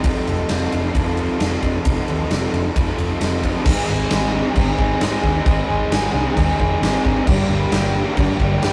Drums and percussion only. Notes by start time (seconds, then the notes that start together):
0.04 kick, ride
0.27 ride
0.49 snare, ride
0.72 ride
0.95 kick, ride
1.17 ride
1.40 snare, ride
1.62 kick, ride
1.85 kick, ride
2.08 ride
2.31 snare, ride
2.54 ride
2.76 kick, ride
2.98 ride
3.21 snare, ride
3.43 kick, ride
3.65 kick, crash
4.10 snare, crash
4.55 kick, crash
4.79 kick
5.01 snare, crash
5.24 kick
5.46 kick, crash
5.92 snare, crash
6.37 kick, crash
6.60 kick
6.83 snare, crash
7.05 kick
7.27 kick, crash
7.72 snare, crash
8.17 kick, crash
8.40 kick
8.62 snare, crash